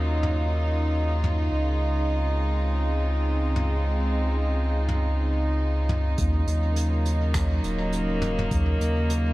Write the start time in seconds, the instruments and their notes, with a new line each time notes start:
Already playing: sub bass D#2, string section C#3 F#3 A#3 D#4 F4
0.23 mid tom
1.24 mid tom
1.52 sub bass C#2
1.58 string section G#3
2.08 string section C4
3.56 mid tom
4.88 mid tom
5.89 mid tom
6.18 sub bass D#2, string section C#3, kick, closed hi-hat
6.32 string section F#3
6.47 sub bass D#2, closed hi-hat
6.70 string section A#3
6.76 closed hi-hat
7.06 closed hi-hat
7.34 finger snap, kick, closed hi-hat
7.64 sub bass D#1, closed hi-hat
7.92 closed hi-hat
8.22 closed hi-hat, mid tom
8.39 mid tom
8.51 sub bass D#2, kick, closed hi-hat
8.80 sub bass D#2, closed hi-hat
9.10 closed hi-hat